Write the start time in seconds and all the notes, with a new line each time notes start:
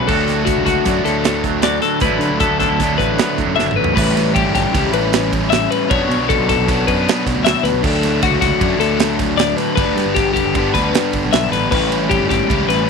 Already playing: D3 A3 D4
0.07 D2 D3 F#3 A3 F#4 A4, kick, crash
0.11 D4
0.28 snare, closed hi-hat
0.45 F#4, kick, closed hi-hat
0.57 C#2
0.65 C#2 D3 F#4, kick, snare, closed hi-hat
0.85 F#2 D3 F#3 A3 D4, kick, snare, closed hi-hat
1.04 D2 A2 A4, snare, closed hi-hat
1.24 snare, closed hi-hat
1.44 F#3, kick, closed hi-hat
1.62 D2 F#4 D5, snare, closed hi-hat
1.82 A4, snare, closed hi-hat
2.00 D2 D3 F#3 E4 B4, kick, closed hi-hat
2.05 A3 D4
2.09 A1
2.19 D3, closed hi-hat
2.30 D2
2.40 B3 A4, kick, closed hi-hat
2.50 D2
2.60 D3 D4 A4, kick, snare, closed hi-hat
2.69 D2 E4
2.79 D3 F#3 A3 D4, kick, snare, closed hi-hat
2.98 A1 A2 B4, kick, closed hi-hat
3.18 B3, snare, closed hi-hat
3.38 D2 F#3, kick, closed hi-hat
3.47 F#2
3.56 F#1 D2 D4 E5, snare
3.66 E4
3.71 mid tom
3.76 A1 B4
3.84 floor tom
3.94 A1 A2 E3 G3 C#4 B4, kick
3.98 E4, crash
4.17 snare, ride
4.35 G4, kick, ride
4.44 G1
4.55 G1 G4, kick, snare, ride
4.72 C#2 A2 E3 G3 C#4 E4, kick, snare, ride
4.92 A1 B4, ride
5.13 snare, ride
5.33 kick, ride
5.50 E5, snare, ride
5.71 B4, ride
5.89 B1 B2 F#3 B3 D4 C#5, kick, ride
5.98 F#2
6.09 B2, ride
6.17 B1
6.29 A4, kick, ride
6.38 B1
6.49 A4, kick, snare, ride
6.57 B1
6.68 B2 F#3 B3 D4, kick, snare, ride
6.87 F#2 B4, kick, ride
7.08 snare, ride
7.26 B1, kick, snare, ride
7.35 D2
7.45 E5, snare, ride
7.63 D2 B4, snare, ride
7.72 B1
7.83 D2 D3 F#3 A3 D4 A4, kick, crash
8.03 snare, ride
8.22 F#4, kick, snare, ride
8.31 C#2
8.41 C#2 F#4, kick, snare, ride
8.60 F#2 D3 F#3 A3 D4, kick, ride
8.79 D2 A4, snare, ride
8.99 snare, ride
9.19 kick, snare, ride
9.38 D5, snare, ride
9.57 B4, snare, ride
9.76 G1 G2 D3 G3 B4, kick, ride
9.80 B3 D4
9.85 D2
9.95 G2, snare, ride
10.06 G1
10.15 G4, kick, snare, ride
10.26 G1
10.34 G4, kick, ride
10.45 G1
10.55 G2 D3 G3 B3, kick, ride
10.59 D4
10.74 D2 B4, kick, snare, ride
10.95 snare, ride
11.13 G1, kick, ride
11.25 B1
11.33 B1 E5, snare, ride
11.52 A1 B4, snare, ride
11.71 A1 A2 E3 G3 C#4 B4, kick, crash
11.76 E4
11.92 ride
12.10 G4, kick, ride
12.20 G1
12.29 G1 G4, kick, snare, ride
12.47 C#2 A2 E3 G3 C#4 E4, kick, ride
12.68 A1 B4, snare, ride